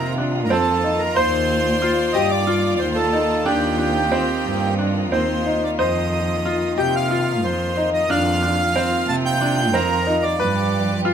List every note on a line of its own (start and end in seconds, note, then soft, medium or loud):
0.00 0.52 C3 medium
0.00 1.12 D#3 medium
0.00 10.35 A#3 medium
0.00 8.05 F4 medium
0.00 0.14 A#4 medium
0.18 0.44 D4 medium
0.44 0.51 A#4 medium
0.50 1.02 F2 medium
0.50 0.77 C4 medium
0.50 1.01 A4 medium
0.84 1.10 D#4 medium
0.99 1.16 A#4 medium
1.15 1.94 D#2 medium
1.15 10.35 D#3 medium
1.15 2.17 C5 loud
1.15 1.69 C5 medium
1.15 3.44 D5 medium
1.82 2.08 F4 medium
2.13 2.83 G2 medium
2.13 2.41 G4 medium
2.13 2.31 D#5 medium
2.31 2.74 D5 medium
2.47 3.00 F4 medium
2.76 2.97 C5 medium
2.76 2.80 D5 medium
2.81 3.32 D#2 medium
2.95 3.47 A4 medium
3.13 3.39 D#4 medium
3.46 4.24 D#2 medium
3.46 5.76 C4 medium
3.46 3.72 D4 medium
3.46 4.74 G4 medium
3.78 4.05 D4 medium
4.12 4.65 C4 medium
4.45 5.13 G2 loud
4.78 5.05 D4 medium
5.12 5.64 D#2 medium
5.12 5.39 C4 medium
5.12 5.64 C5 medium
5.46 5.72 D#4 medium
5.64 5.71 D5 medium
5.78 6.57 F2 medium
5.78 6.32 C5 medium
5.78 6.81 D#5 medium
6.45 6.72 F4 medium
6.78 7.45 C3 loud
6.78 7.04 G4 medium
6.78 6.95 G5 medium
6.96 7.46 F5 medium
7.11 7.64 F4 medium
7.43 7.95 F2 medium
7.43 7.90 C5 medium
7.77 8.03 D#4 medium
7.94 8.10 D#5 medium
8.09 8.87 F2 medium
8.09 8.36 D4 medium
8.09 10.37 F4 medium
8.09 9.11 F5 loud
8.42 8.69 D4 medium
8.76 9.28 C4 medium
9.07 9.75 C3 loud
9.07 9.16 A5 loud
9.25 9.75 G5 loud
9.41 9.67 D4 medium
9.73 10.25 F2 medium
9.73 10.00 C4 medium
9.73 10.24 A#4 medium
10.07 10.33 D#4 medium
10.23 11.01 D5 medium
10.39 11.14 G2 loud
10.39 11.14 F3 medium
10.39 11.14 G4 medium
10.39 11.14 B4 medium
10.39 10.92 B4 medium
11.05 11.14 F4 medium